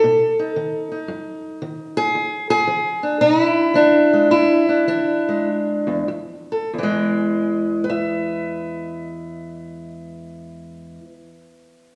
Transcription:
0.00 0.53 B2 medium
0.00 1.44 A4 loud
0.39 0.90 D#4 medium
0.56 1.06 D#3 medium
0.92 2.12 D#4 soft
1.08 1.58 F#2 medium
1.62 2.11 D#3 medium
1.97 2.49 G#4 loud
2.15 2.64 E2 medium
2.50 3.21 G#4 loud
2.67 3.17 E3 medium
3.03 3.74 D4 medium
3.21 3.72 B2 medium
3.21 3.42 D#4 loud
3.42 4.30 E4 loud
3.74 4.27 E3 medium
3.74 4.68 D4 medium
4.13 4.29 G#3 soft
4.31 4.84 E2 medium
4.31 5.47 E4 medium
4.69 4.87 D4 medium
4.88 5.43 E3 medium
4.88 6.09 D4 medium
5.29 6.07 G#3 soft
5.87 6.08 E2 medium
6.08 6.68 F2 medium
6.52 6.71 A4 medium
6.74 10.99 E2 medium
6.79 11.04 E3 medium
6.83 11.04 G#3 medium
7.84 11.95 B4 medium
7.90 11.95 E5 medium

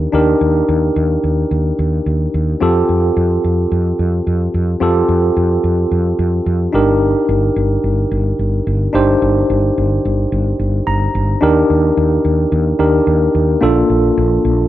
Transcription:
0.00 0.10 G4 medium
0.00 0.10 A#4 medium
0.12 0.33 D#2 medium
0.12 2.29 D4 medium
0.12 2.30 D#4 medium
0.12 2.30 G4 medium
0.12 2.30 A#4 medium
0.41 0.61 D#2 medium
0.69 0.89 D#2 loud
0.96 1.16 D#2 loud
1.24 1.44 D#2 medium
1.51 1.71 D#2 medium
1.79 1.99 D#2 medium
2.06 2.26 D#2 medium
2.34 2.54 D#2 medium
2.60 2.81 F2 medium
2.60 4.77 C4 medium
2.60 4.78 F4 medium
2.60 4.78 G4 medium
2.60 4.78 A4 medium
2.89 3.09 F2 medium
3.17 3.36 F2 loud
3.44 3.64 F2 medium
3.72 3.91 F2 medium
3.99 4.19 F2 medium
4.27 4.47 F2 medium
4.54 4.74 F2 medium
4.80 5.01 F2 medium
4.80 6.70 C4 medium
4.80 6.70 F4 medium
4.80 6.71 G4 medium
4.80 6.71 A4 medium
5.09 5.29 F2 medium
5.37 5.56 F2 medium
5.64 5.84 F2 medium
5.92 6.11 F2 medium
6.19 6.39 F2 loud
6.46 6.66 F2 loud
6.73 7.14 G1 medium
6.73 8.90 D4 medium
6.73 8.90 D#4 medium
6.73 8.91 G4 medium
6.73 8.91 A#4 medium
7.29 7.49 G1 medium
7.56 7.76 G1 medium
7.84 8.04 G1 medium
8.11 8.32 G1 loud
8.39 8.59 G1 medium
8.67 8.87 G1 medium
8.93 9.14 G1 medium
8.93 11.10 D4 medium
8.93 11.10 D#4 medium
8.93 11.11 G4 medium
8.93 11.11 C5 medium
9.22 9.42 G1 loud
9.50 9.70 G1 loud
9.78 9.97 G1 loud
10.05 10.25 G1 medium
10.32 10.52 G1 medium
10.59 10.79 G1 medium
10.87 11.07 G1 medium
10.87 11.38 A#5 medium
11.15 11.35 G1 loud
11.41 11.62 D#2 loud
11.41 12.76 D4 medium
11.41 12.77 D#4 medium
11.41 12.77 G4 medium
11.41 12.78 A#4 medium
11.70 11.90 D#2 medium
11.97 12.17 D#2 medium
12.25 12.45 D#2 medium
12.52 12.72 D#2 loud
12.79 12.99 D#2 medium
12.79 13.60 D4 medium
12.79 13.62 D#4 soft
12.79 13.62 G4 medium
12.79 13.63 A#4 medium
13.07 13.27 D#2 medium
13.35 13.55 D#2 medium
13.61 13.82 A#1 loud
13.61 14.68 A#3 medium
13.61 14.68 D4 medium
13.61 14.68 F4 medium
13.61 14.68 A4 medium
13.90 14.10 A#1 medium
14.18 14.37 A#1 medium
14.45 14.65 A#1 medium

